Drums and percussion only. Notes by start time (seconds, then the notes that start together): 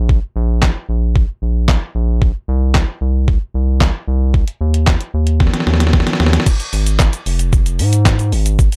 0.09 kick
0.62 kick, snare, clap
1.16 kick
1.68 kick, snare, clap
2.22 kick
2.74 kick, snare, clap
3.28 kick
3.80 kick, snare, clap
4.34 kick
4.48 closed hi-hat
4.74 closed hi-hat
4.86 kick, snare, clap
5.01 closed hi-hat
5.27 closed hi-hat
5.40 kick, snare
5.47 snare
5.54 snare, closed hi-hat
5.60 snare
5.67 snare
5.74 snare
5.80 snare, closed hi-hat
5.87 snare
5.93 kick, snare
6.00 snare
6.07 snare, closed hi-hat
6.13 snare
6.20 snare
6.26 snare
6.33 snare, closed hi-hat
6.40 snare
6.46 kick, crash, shaker
6.60 closed hi-hat, shaker
6.73 open hi-hat, shaker
6.87 closed hi-hat, shaker
6.99 kick, snare, clap, shaker
7.13 closed hi-hat, shaker
7.26 open hi-hat, shaker
7.39 closed hi-hat, shaker
7.53 kick, shaker
7.66 closed hi-hat, shaker
7.79 open hi-hat, shaker
7.93 closed hi-hat, shaker
8.05 kick, snare, clap, shaker
8.19 closed hi-hat, shaker
8.32 open hi-hat, shaker
8.46 closed hi-hat, shaker
8.59 kick, shaker
8.72 closed hi-hat, shaker